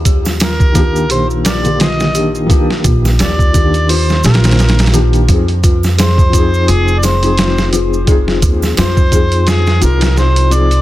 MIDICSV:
0, 0, Header, 1, 6, 480
1, 0, Start_track
1, 0, Tempo, 697674
1, 1718, Time_signature, 4, 2, 24, 8
1, 7442, End_track
2, 0, Start_track
2, 0, Title_t, "Harmonica"
2, 0, Program_c, 0, 22
2, 285, Note_on_c, 0, 70, 81
2, 734, Note_off_c, 0, 70, 0
2, 766, Note_on_c, 0, 72, 98
2, 872, Note_off_c, 0, 72, 0
2, 1003, Note_on_c, 0, 70, 66
2, 1003, Note_on_c, 0, 74, 95
2, 1053, Note_off_c, 0, 70, 0
2, 1224, Note_off_c, 0, 74, 0
2, 1245, Note_on_c, 0, 68, 67
2, 1245, Note_on_c, 0, 72, 67
2, 1245, Note_on_c, 0, 75, 95
2, 1287, Note_off_c, 0, 72, 0
2, 1291, Note_off_c, 0, 68, 0
2, 1591, Note_off_c, 0, 75, 0
2, 2206, Note_on_c, 0, 74, 101
2, 2685, Note_on_c, 0, 72, 100
2, 2696, Note_off_c, 0, 74, 0
2, 2922, Note_off_c, 0, 72, 0
2, 2925, Note_on_c, 0, 70, 80
2, 3374, Note_off_c, 0, 70, 0
2, 4129, Note_on_c, 0, 72, 101
2, 4607, Note_on_c, 0, 68, 104
2, 4618, Note_off_c, 0, 72, 0
2, 4806, Note_on_c, 0, 74, 72
2, 4816, Note_off_c, 0, 68, 0
2, 4849, Note_on_c, 0, 72, 102
2, 4859, Note_off_c, 0, 74, 0
2, 5323, Note_off_c, 0, 72, 0
2, 6050, Note_on_c, 0, 72, 94
2, 6527, Note_on_c, 0, 68, 93
2, 6537, Note_off_c, 0, 72, 0
2, 6762, Note_off_c, 0, 68, 0
2, 6766, Note_on_c, 0, 70, 80
2, 6985, Note_off_c, 0, 70, 0
2, 7009, Note_on_c, 0, 72, 87
2, 7246, Note_on_c, 0, 74, 105
2, 7256, Note_off_c, 0, 72, 0
2, 7442, Note_off_c, 0, 74, 0
2, 7442, End_track
3, 0, Start_track
3, 0, Title_t, "Synth bell"
3, 0, Program_c, 1, 98
3, 0, Control_c, 1, 64, 127
3, 0, Note_on_c, 1, 65, 99
3, 39, Note_on_c, 1, 67, 74
3, 268, Note_off_c, 1, 67, 0
3, 280, Note_off_c, 1, 65, 0
3, 280, Note_on_c, 1, 65, 78
3, 509, Note_off_c, 1, 65, 0
3, 518, Note_on_c, 1, 65, 98
3, 748, Note_off_c, 1, 65, 0
3, 760, Note_on_c, 1, 67, 83
3, 988, Note_off_c, 1, 67, 0
3, 1000, Note_on_c, 1, 65, 77
3, 1228, Note_off_c, 1, 65, 0
3, 1238, Note_on_c, 1, 65, 91
3, 1468, Note_off_c, 1, 65, 0
3, 1478, Note_on_c, 1, 67, 71
3, 1707, Note_off_c, 1, 67, 0
3, 1719, Note_on_c, 1, 65, 83
3, 1948, Note_off_c, 1, 65, 0
3, 1958, Note_on_c, 1, 65, 97
3, 2188, Note_off_c, 1, 65, 0
3, 2199, Note_on_c, 1, 67, 79
3, 2428, Note_off_c, 1, 67, 0
3, 2440, Note_on_c, 1, 65, 74
3, 2668, Note_off_c, 1, 65, 0
3, 2679, Note_on_c, 1, 65, 94
3, 2908, Note_off_c, 1, 65, 0
3, 2919, Note_on_c, 1, 67, 75
3, 3148, Note_off_c, 1, 67, 0
3, 3160, Note_on_c, 1, 65, 81
3, 3388, Note_off_c, 1, 65, 0
3, 3398, Note_on_c, 1, 65, 104
3, 3627, Note_off_c, 1, 65, 0
3, 3638, Note_on_c, 1, 65, 82
3, 3648, Control_c, 1, 64, 0
3, 3775, Control_c, 1, 64, 127
3, 3868, Note_off_c, 1, 65, 0
3, 3877, Note_on_c, 1, 65, 96
3, 4107, Note_off_c, 1, 65, 0
3, 4117, Note_on_c, 1, 68, 83
3, 4347, Note_off_c, 1, 68, 0
3, 4358, Note_on_c, 1, 65, 76
3, 4588, Note_off_c, 1, 65, 0
3, 4598, Note_on_c, 1, 65, 101
3, 4828, Note_off_c, 1, 65, 0
3, 4838, Note_on_c, 1, 68, 79
3, 5068, Note_off_c, 1, 68, 0
3, 5079, Note_on_c, 1, 65, 77
3, 5308, Note_off_c, 1, 65, 0
3, 5317, Note_on_c, 1, 65, 97
3, 5547, Note_off_c, 1, 65, 0
3, 5557, Note_on_c, 1, 68, 86
3, 5787, Note_off_c, 1, 68, 0
3, 5797, Note_on_c, 1, 65, 77
3, 6027, Note_off_c, 1, 65, 0
3, 6038, Note_on_c, 1, 65, 99
3, 6267, Note_off_c, 1, 65, 0
3, 6277, Note_on_c, 1, 68, 71
3, 6507, Note_off_c, 1, 68, 0
3, 6516, Note_on_c, 1, 65, 83
3, 6747, Note_off_c, 1, 65, 0
3, 6758, Note_on_c, 1, 65, 104
3, 6987, Note_off_c, 1, 65, 0
3, 6997, Note_on_c, 1, 68, 80
3, 7227, Note_off_c, 1, 68, 0
3, 7238, Note_on_c, 1, 65, 73
3, 7442, Note_off_c, 1, 65, 0
3, 7442, End_track
4, 0, Start_track
4, 0, Title_t, "Felt piano"
4, 0, Program_c, 2, 0
4, 497, Note_on_c, 2, 51, 95
4, 512, Note_on_c, 2, 58, 92
4, 527, Note_on_c, 2, 62, 89
4, 541, Note_on_c, 2, 67, 103
4, 1090, Note_off_c, 2, 51, 0
4, 1098, Note_off_c, 2, 58, 0
4, 1105, Note_off_c, 2, 62, 0
4, 1112, Note_off_c, 2, 67, 0
4, 1123, Note_on_c, 2, 51, 91
4, 1130, Note_on_c, 2, 58, 82
4, 1138, Note_on_c, 2, 50, 83
4, 1146, Note_on_c, 2, 67, 99
4, 1447, Note_off_c, 2, 51, 0
4, 1451, Note_off_c, 2, 58, 0
4, 1455, Note_off_c, 2, 50, 0
4, 1459, Note_off_c, 2, 67, 0
4, 1464, Note_on_c, 2, 51, 76
4, 1471, Note_on_c, 2, 58, 73
4, 1479, Note_on_c, 2, 62, 73
4, 1488, Note_on_c, 2, 67, 86
4, 1685, Note_off_c, 2, 51, 0
4, 1690, Note_off_c, 2, 58, 0
4, 1693, Note_off_c, 2, 62, 0
4, 1696, Note_on_c, 2, 51, 94
4, 1698, Note_off_c, 2, 67, 0
4, 1711, Note_on_c, 2, 58, 93
4, 1725, Note_on_c, 2, 62, 91
4, 1741, Note_on_c, 2, 67, 109
4, 2402, Note_off_c, 2, 51, 0
4, 2409, Note_off_c, 2, 58, 0
4, 2417, Note_off_c, 2, 62, 0
4, 2424, Note_off_c, 2, 67, 0
4, 2428, Note_on_c, 2, 51, 81
4, 2434, Note_on_c, 2, 58, 71
4, 2442, Note_on_c, 2, 62, 72
4, 2450, Note_on_c, 2, 67, 87
4, 2892, Note_off_c, 2, 51, 0
4, 2895, Note_off_c, 2, 58, 0
4, 2899, Note_off_c, 2, 62, 0
4, 2903, Note_off_c, 2, 67, 0
4, 3044, Note_on_c, 2, 51, 72
4, 3053, Note_on_c, 2, 58, 70
4, 3061, Note_on_c, 2, 62, 69
4, 3066, Note_on_c, 2, 72, 83
4, 3368, Note_off_c, 2, 51, 0
4, 3372, Note_off_c, 2, 58, 0
4, 3377, Note_off_c, 2, 62, 0
4, 3379, Note_off_c, 2, 72, 0
4, 3387, Note_on_c, 2, 51, 101
4, 3394, Note_on_c, 2, 58, 89
4, 3403, Note_on_c, 2, 62, 95
4, 3410, Note_on_c, 2, 67, 116
4, 3608, Note_off_c, 2, 51, 0
4, 3611, Note_off_c, 2, 58, 0
4, 3615, Note_off_c, 2, 62, 0
4, 3619, Note_off_c, 2, 67, 0
4, 3628, Note_on_c, 2, 53, 83
4, 3636, Note_on_c, 2, 60, 80
4, 3644, Note_on_c, 2, 63, 77
4, 3652, Note_on_c, 2, 68, 95
4, 3760, Note_off_c, 2, 53, 0
4, 3764, Note_off_c, 2, 60, 0
4, 3768, Note_off_c, 2, 63, 0
4, 3772, Note_off_c, 2, 68, 0
4, 4333, Note_on_c, 2, 53, 95
4, 4347, Note_on_c, 2, 60, 86
4, 4363, Note_on_c, 2, 63, 90
4, 4378, Note_on_c, 2, 68, 107
4, 4929, Note_off_c, 2, 53, 0
4, 4935, Note_off_c, 2, 60, 0
4, 4944, Note_off_c, 2, 63, 0
4, 4951, Note_off_c, 2, 68, 0
4, 4962, Note_on_c, 2, 53, 85
4, 4968, Note_on_c, 2, 60, 81
4, 4975, Note_on_c, 2, 63, 85
4, 4983, Note_on_c, 2, 68, 102
4, 5287, Note_off_c, 2, 53, 0
4, 5290, Note_off_c, 2, 60, 0
4, 5294, Note_off_c, 2, 63, 0
4, 5297, Note_off_c, 2, 68, 0
4, 5305, Note_on_c, 2, 53, 77
4, 5315, Note_on_c, 2, 60, 69
4, 5323, Note_on_c, 2, 63, 66
4, 5330, Note_on_c, 2, 68, 84
4, 5523, Note_off_c, 2, 53, 0
4, 5531, Note_off_c, 2, 60, 0
4, 5534, Note_on_c, 2, 53, 99
4, 5535, Note_off_c, 2, 63, 0
4, 5539, Note_off_c, 2, 68, 0
4, 5549, Note_on_c, 2, 60, 85
4, 5564, Note_on_c, 2, 63, 93
4, 5577, Note_on_c, 2, 68, 111
4, 6241, Note_off_c, 2, 53, 0
4, 6248, Note_off_c, 2, 60, 0
4, 6256, Note_off_c, 2, 63, 0
4, 6263, Note_off_c, 2, 68, 0
4, 6263, Note_on_c, 2, 53, 80
4, 6271, Note_on_c, 2, 60, 68
4, 6278, Note_on_c, 2, 63, 73
4, 6287, Note_on_c, 2, 68, 87
4, 6729, Note_off_c, 2, 53, 0
4, 6733, Note_off_c, 2, 60, 0
4, 6737, Note_off_c, 2, 63, 0
4, 6742, Note_off_c, 2, 68, 0
4, 6744, Note_on_c, 2, 53, 82
4, 6752, Note_on_c, 2, 60, 70
4, 6759, Note_on_c, 2, 63, 77
4, 6767, Note_on_c, 2, 68, 84
4, 7206, Note_off_c, 2, 53, 0
4, 7210, Note_off_c, 2, 60, 0
4, 7213, Note_off_c, 2, 63, 0
4, 7217, Note_off_c, 2, 68, 0
4, 7223, Note_on_c, 2, 53, 99
4, 7229, Note_on_c, 2, 60, 85
4, 7238, Note_on_c, 2, 63, 86
4, 7246, Note_on_c, 2, 68, 105
4, 7442, Note_off_c, 2, 53, 0
4, 7442, Note_off_c, 2, 60, 0
4, 7442, Note_off_c, 2, 63, 0
4, 7442, Note_off_c, 2, 68, 0
4, 7442, End_track
5, 0, Start_track
5, 0, Title_t, "Upright bass"
5, 0, Program_c, 3, 32
5, 0, Note_on_c, 3, 39, 99
5, 760, Note_off_c, 3, 39, 0
5, 760, Note_on_c, 3, 34, 88
5, 1939, Note_off_c, 3, 34, 0
5, 1958, Note_on_c, 3, 34, 98
5, 2173, Note_off_c, 3, 34, 0
5, 2200, Note_on_c, 3, 39, 85
5, 2899, Note_off_c, 3, 39, 0
5, 2918, Note_on_c, 3, 34, 91
5, 3618, Note_off_c, 3, 34, 0
5, 3637, Note_on_c, 3, 41, 98
5, 4602, Note_on_c, 3, 29, 87
5, 4612, Note_off_c, 3, 41, 0
5, 5780, Note_off_c, 3, 29, 0
5, 5796, Note_on_c, 3, 39, 98
5, 6012, Note_off_c, 3, 39, 0
5, 6041, Note_on_c, 3, 41, 89
5, 6739, Note_off_c, 3, 41, 0
5, 6760, Note_on_c, 3, 36, 97
5, 7442, Note_off_c, 3, 36, 0
5, 7442, End_track
6, 0, Start_track
6, 0, Title_t, "Drums"
6, 36, Note_on_c, 9, 42, 68
6, 37, Note_on_c, 9, 36, 94
6, 40, Note_on_c, 9, 82, 94
6, 105, Note_off_c, 9, 42, 0
6, 106, Note_off_c, 9, 36, 0
6, 109, Note_off_c, 9, 82, 0
6, 175, Note_on_c, 9, 81, 66
6, 175, Note_on_c, 9, 82, 46
6, 181, Note_on_c, 9, 38, 40
6, 243, Note_off_c, 9, 81, 0
6, 244, Note_off_c, 9, 82, 0
6, 250, Note_off_c, 9, 38, 0
6, 275, Note_on_c, 9, 81, 63
6, 276, Note_on_c, 9, 82, 62
6, 277, Note_on_c, 9, 42, 89
6, 285, Note_on_c, 9, 38, 117
6, 344, Note_off_c, 9, 81, 0
6, 345, Note_off_c, 9, 82, 0
6, 346, Note_off_c, 9, 42, 0
6, 353, Note_off_c, 9, 38, 0
6, 413, Note_on_c, 9, 36, 104
6, 414, Note_on_c, 9, 82, 37
6, 482, Note_off_c, 9, 36, 0
6, 483, Note_off_c, 9, 82, 0
6, 516, Note_on_c, 9, 42, 70
6, 517, Note_on_c, 9, 36, 98
6, 518, Note_on_c, 9, 82, 91
6, 585, Note_off_c, 9, 42, 0
6, 586, Note_off_c, 9, 36, 0
6, 587, Note_off_c, 9, 82, 0
6, 660, Note_on_c, 9, 82, 44
6, 729, Note_off_c, 9, 82, 0
6, 755, Note_on_c, 9, 42, 91
6, 763, Note_on_c, 9, 82, 51
6, 824, Note_off_c, 9, 42, 0
6, 832, Note_off_c, 9, 82, 0
6, 897, Note_on_c, 9, 82, 37
6, 966, Note_off_c, 9, 82, 0
6, 996, Note_on_c, 9, 42, 78
6, 1001, Note_on_c, 9, 82, 92
6, 1002, Note_on_c, 9, 81, 71
6, 1004, Note_on_c, 9, 38, 108
6, 1065, Note_off_c, 9, 42, 0
6, 1070, Note_off_c, 9, 82, 0
6, 1071, Note_off_c, 9, 81, 0
6, 1073, Note_off_c, 9, 38, 0
6, 1132, Note_on_c, 9, 82, 46
6, 1134, Note_on_c, 9, 42, 45
6, 1201, Note_off_c, 9, 82, 0
6, 1203, Note_off_c, 9, 42, 0
6, 1238, Note_on_c, 9, 42, 78
6, 1245, Note_on_c, 9, 38, 99
6, 1246, Note_on_c, 9, 82, 54
6, 1307, Note_off_c, 9, 42, 0
6, 1314, Note_off_c, 9, 38, 0
6, 1315, Note_off_c, 9, 82, 0
6, 1376, Note_on_c, 9, 82, 41
6, 1381, Note_on_c, 9, 38, 47
6, 1445, Note_off_c, 9, 82, 0
6, 1449, Note_off_c, 9, 38, 0
6, 1478, Note_on_c, 9, 42, 69
6, 1479, Note_on_c, 9, 82, 89
6, 1547, Note_off_c, 9, 42, 0
6, 1548, Note_off_c, 9, 82, 0
6, 1617, Note_on_c, 9, 82, 39
6, 1685, Note_off_c, 9, 82, 0
6, 1718, Note_on_c, 9, 36, 111
6, 1718, Note_on_c, 9, 42, 84
6, 1725, Note_on_c, 9, 82, 56
6, 1786, Note_off_c, 9, 36, 0
6, 1787, Note_off_c, 9, 42, 0
6, 1793, Note_off_c, 9, 82, 0
6, 1861, Note_on_c, 9, 38, 49
6, 1930, Note_off_c, 9, 38, 0
6, 1956, Note_on_c, 9, 42, 75
6, 1957, Note_on_c, 9, 36, 98
6, 1959, Note_on_c, 9, 82, 103
6, 2025, Note_off_c, 9, 42, 0
6, 2026, Note_off_c, 9, 36, 0
6, 2028, Note_off_c, 9, 82, 0
6, 2099, Note_on_c, 9, 81, 70
6, 2099, Note_on_c, 9, 82, 44
6, 2101, Note_on_c, 9, 38, 42
6, 2168, Note_off_c, 9, 81, 0
6, 2168, Note_off_c, 9, 82, 0
6, 2169, Note_off_c, 9, 38, 0
6, 2196, Note_on_c, 9, 42, 93
6, 2202, Note_on_c, 9, 81, 59
6, 2203, Note_on_c, 9, 38, 120
6, 2204, Note_on_c, 9, 82, 54
6, 2264, Note_off_c, 9, 42, 0
6, 2270, Note_off_c, 9, 81, 0
6, 2272, Note_off_c, 9, 38, 0
6, 2273, Note_off_c, 9, 82, 0
6, 2333, Note_on_c, 9, 36, 98
6, 2339, Note_on_c, 9, 82, 37
6, 2401, Note_off_c, 9, 36, 0
6, 2408, Note_off_c, 9, 82, 0
6, 2437, Note_on_c, 9, 36, 94
6, 2437, Note_on_c, 9, 42, 73
6, 2440, Note_on_c, 9, 82, 93
6, 2506, Note_off_c, 9, 36, 0
6, 2506, Note_off_c, 9, 42, 0
6, 2509, Note_off_c, 9, 82, 0
6, 2574, Note_on_c, 9, 42, 43
6, 2575, Note_on_c, 9, 82, 41
6, 2643, Note_off_c, 9, 42, 0
6, 2643, Note_off_c, 9, 82, 0
6, 2679, Note_on_c, 9, 46, 82
6, 2683, Note_on_c, 9, 82, 51
6, 2747, Note_off_c, 9, 46, 0
6, 2752, Note_off_c, 9, 82, 0
6, 2816, Note_on_c, 9, 82, 34
6, 2822, Note_on_c, 9, 38, 42
6, 2885, Note_off_c, 9, 82, 0
6, 2891, Note_off_c, 9, 38, 0
6, 2914, Note_on_c, 9, 82, 87
6, 2920, Note_on_c, 9, 42, 69
6, 2928, Note_on_c, 9, 38, 93
6, 2983, Note_off_c, 9, 82, 0
6, 2986, Note_off_c, 9, 42, 0
6, 2986, Note_on_c, 9, 42, 68
6, 2993, Note_off_c, 9, 38, 0
6, 2993, Note_on_c, 9, 38, 90
6, 3054, Note_off_c, 9, 42, 0
6, 3054, Note_on_c, 9, 42, 64
6, 3055, Note_on_c, 9, 82, 44
6, 3062, Note_off_c, 9, 38, 0
6, 3062, Note_on_c, 9, 38, 92
6, 3105, Note_off_c, 9, 42, 0
6, 3105, Note_on_c, 9, 42, 66
6, 3113, Note_off_c, 9, 38, 0
6, 3113, Note_on_c, 9, 38, 87
6, 3123, Note_off_c, 9, 82, 0
6, 3157, Note_off_c, 9, 42, 0
6, 3157, Note_on_c, 9, 42, 65
6, 3164, Note_on_c, 9, 82, 49
6, 3165, Note_off_c, 9, 38, 0
6, 3165, Note_on_c, 9, 38, 87
6, 3224, Note_off_c, 9, 42, 0
6, 3224, Note_on_c, 9, 42, 64
6, 3232, Note_off_c, 9, 38, 0
6, 3232, Note_on_c, 9, 38, 86
6, 3233, Note_off_c, 9, 82, 0
6, 3293, Note_off_c, 9, 42, 0
6, 3294, Note_on_c, 9, 42, 72
6, 3300, Note_off_c, 9, 38, 0
6, 3302, Note_on_c, 9, 38, 92
6, 3302, Note_on_c, 9, 82, 37
6, 3345, Note_off_c, 9, 42, 0
6, 3345, Note_on_c, 9, 42, 72
6, 3353, Note_off_c, 9, 38, 0
6, 3353, Note_on_c, 9, 38, 88
6, 3370, Note_off_c, 9, 82, 0
6, 3396, Note_off_c, 9, 42, 0
6, 3396, Note_on_c, 9, 42, 68
6, 3399, Note_on_c, 9, 82, 92
6, 3422, Note_off_c, 9, 38, 0
6, 3465, Note_off_c, 9, 42, 0
6, 3467, Note_off_c, 9, 82, 0
6, 3531, Note_on_c, 9, 42, 44
6, 3541, Note_on_c, 9, 82, 39
6, 3599, Note_off_c, 9, 42, 0
6, 3610, Note_off_c, 9, 82, 0
6, 3636, Note_on_c, 9, 42, 90
6, 3637, Note_on_c, 9, 36, 111
6, 3641, Note_on_c, 9, 82, 53
6, 3705, Note_off_c, 9, 36, 0
6, 3705, Note_off_c, 9, 42, 0
6, 3710, Note_off_c, 9, 82, 0
6, 3773, Note_on_c, 9, 42, 43
6, 3842, Note_off_c, 9, 42, 0
6, 3878, Note_on_c, 9, 36, 104
6, 3878, Note_on_c, 9, 42, 71
6, 3878, Note_on_c, 9, 82, 86
6, 3946, Note_off_c, 9, 36, 0
6, 3947, Note_off_c, 9, 42, 0
6, 3947, Note_off_c, 9, 82, 0
6, 4013, Note_on_c, 9, 81, 63
6, 4016, Note_on_c, 9, 82, 46
6, 4022, Note_on_c, 9, 38, 40
6, 4082, Note_off_c, 9, 81, 0
6, 4085, Note_off_c, 9, 82, 0
6, 4090, Note_off_c, 9, 38, 0
6, 4118, Note_on_c, 9, 42, 89
6, 4122, Note_on_c, 9, 81, 62
6, 4123, Note_on_c, 9, 82, 60
6, 4125, Note_on_c, 9, 38, 121
6, 4186, Note_off_c, 9, 42, 0
6, 4191, Note_off_c, 9, 81, 0
6, 4192, Note_off_c, 9, 82, 0
6, 4194, Note_off_c, 9, 38, 0
6, 4253, Note_on_c, 9, 36, 105
6, 4258, Note_on_c, 9, 82, 38
6, 4321, Note_off_c, 9, 36, 0
6, 4327, Note_off_c, 9, 82, 0
6, 4357, Note_on_c, 9, 36, 100
6, 4357, Note_on_c, 9, 42, 72
6, 4364, Note_on_c, 9, 82, 91
6, 4426, Note_off_c, 9, 36, 0
6, 4426, Note_off_c, 9, 42, 0
6, 4433, Note_off_c, 9, 82, 0
6, 4499, Note_on_c, 9, 82, 38
6, 4568, Note_off_c, 9, 82, 0
6, 4598, Note_on_c, 9, 42, 91
6, 4600, Note_on_c, 9, 82, 60
6, 4666, Note_off_c, 9, 42, 0
6, 4668, Note_off_c, 9, 82, 0
6, 4732, Note_on_c, 9, 82, 38
6, 4801, Note_off_c, 9, 82, 0
6, 4837, Note_on_c, 9, 82, 97
6, 4839, Note_on_c, 9, 42, 68
6, 4842, Note_on_c, 9, 81, 68
6, 4846, Note_on_c, 9, 38, 45
6, 4906, Note_off_c, 9, 82, 0
6, 4907, Note_off_c, 9, 42, 0
6, 4911, Note_off_c, 9, 81, 0
6, 4915, Note_off_c, 9, 38, 0
6, 4972, Note_on_c, 9, 42, 44
6, 4977, Note_on_c, 9, 82, 39
6, 5041, Note_off_c, 9, 42, 0
6, 5046, Note_off_c, 9, 82, 0
6, 5074, Note_on_c, 9, 42, 84
6, 5082, Note_on_c, 9, 38, 112
6, 5084, Note_on_c, 9, 82, 50
6, 5143, Note_off_c, 9, 42, 0
6, 5151, Note_off_c, 9, 38, 0
6, 5153, Note_off_c, 9, 82, 0
6, 5215, Note_on_c, 9, 82, 36
6, 5219, Note_on_c, 9, 38, 48
6, 5284, Note_off_c, 9, 82, 0
6, 5287, Note_off_c, 9, 38, 0
6, 5316, Note_on_c, 9, 42, 69
6, 5324, Note_on_c, 9, 82, 85
6, 5385, Note_off_c, 9, 42, 0
6, 5393, Note_off_c, 9, 82, 0
6, 5459, Note_on_c, 9, 82, 39
6, 5528, Note_off_c, 9, 82, 0
6, 5554, Note_on_c, 9, 42, 83
6, 5556, Note_on_c, 9, 36, 113
6, 5557, Note_on_c, 9, 82, 54
6, 5623, Note_off_c, 9, 42, 0
6, 5624, Note_off_c, 9, 36, 0
6, 5626, Note_off_c, 9, 82, 0
6, 5696, Note_on_c, 9, 38, 48
6, 5765, Note_off_c, 9, 38, 0
6, 5796, Note_on_c, 9, 36, 97
6, 5796, Note_on_c, 9, 42, 73
6, 5798, Note_on_c, 9, 82, 93
6, 5864, Note_off_c, 9, 36, 0
6, 5864, Note_off_c, 9, 42, 0
6, 5867, Note_off_c, 9, 82, 0
6, 5933, Note_on_c, 9, 81, 63
6, 5935, Note_on_c, 9, 82, 39
6, 5940, Note_on_c, 9, 38, 41
6, 6002, Note_off_c, 9, 81, 0
6, 6004, Note_off_c, 9, 82, 0
6, 6009, Note_off_c, 9, 38, 0
6, 6036, Note_on_c, 9, 42, 94
6, 6036, Note_on_c, 9, 81, 61
6, 6042, Note_on_c, 9, 82, 48
6, 6044, Note_on_c, 9, 38, 118
6, 6105, Note_off_c, 9, 42, 0
6, 6105, Note_off_c, 9, 81, 0
6, 6111, Note_off_c, 9, 82, 0
6, 6113, Note_off_c, 9, 38, 0
6, 6171, Note_on_c, 9, 36, 96
6, 6172, Note_on_c, 9, 82, 38
6, 6240, Note_off_c, 9, 36, 0
6, 6241, Note_off_c, 9, 82, 0
6, 6274, Note_on_c, 9, 42, 71
6, 6275, Note_on_c, 9, 36, 96
6, 6280, Note_on_c, 9, 82, 81
6, 6343, Note_off_c, 9, 42, 0
6, 6344, Note_off_c, 9, 36, 0
6, 6349, Note_off_c, 9, 82, 0
6, 6410, Note_on_c, 9, 42, 44
6, 6411, Note_on_c, 9, 82, 39
6, 6479, Note_off_c, 9, 42, 0
6, 6480, Note_off_c, 9, 82, 0
6, 6513, Note_on_c, 9, 42, 77
6, 6521, Note_on_c, 9, 38, 105
6, 6521, Note_on_c, 9, 82, 54
6, 6582, Note_off_c, 9, 42, 0
6, 6589, Note_off_c, 9, 38, 0
6, 6590, Note_off_c, 9, 82, 0
6, 6650, Note_on_c, 9, 82, 38
6, 6656, Note_on_c, 9, 38, 53
6, 6719, Note_off_c, 9, 82, 0
6, 6725, Note_off_c, 9, 38, 0
6, 6753, Note_on_c, 9, 42, 65
6, 6758, Note_on_c, 9, 82, 93
6, 6822, Note_off_c, 9, 42, 0
6, 6827, Note_off_c, 9, 82, 0
6, 6887, Note_on_c, 9, 42, 76
6, 6895, Note_on_c, 9, 38, 98
6, 6903, Note_on_c, 9, 82, 37
6, 6956, Note_off_c, 9, 42, 0
6, 6964, Note_off_c, 9, 38, 0
6, 6972, Note_off_c, 9, 82, 0
6, 6999, Note_on_c, 9, 82, 49
6, 7000, Note_on_c, 9, 38, 46
6, 7067, Note_off_c, 9, 82, 0
6, 7068, Note_off_c, 9, 38, 0
6, 7130, Note_on_c, 9, 42, 69
6, 7131, Note_on_c, 9, 82, 33
6, 7199, Note_off_c, 9, 42, 0
6, 7199, Note_off_c, 9, 82, 0
6, 7234, Note_on_c, 9, 42, 71
6, 7238, Note_on_c, 9, 82, 85
6, 7303, Note_off_c, 9, 42, 0
6, 7307, Note_off_c, 9, 82, 0
6, 7369, Note_on_c, 9, 42, 42
6, 7374, Note_on_c, 9, 82, 43
6, 7438, Note_off_c, 9, 42, 0
6, 7442, Note_off_c, 9, 82, 0
6, 7442, End_track
0, 0, End_of_file